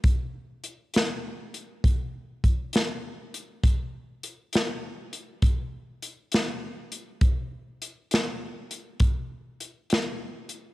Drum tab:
HH |x-xx-xx-xx-x|x-xx-xx-xx-x|x-xx-xx-xx-x|
SD |---o-----o--|---o-----o--|---o-----o--|
BD |o-----o-o---|o-----o-----|o-----o-----|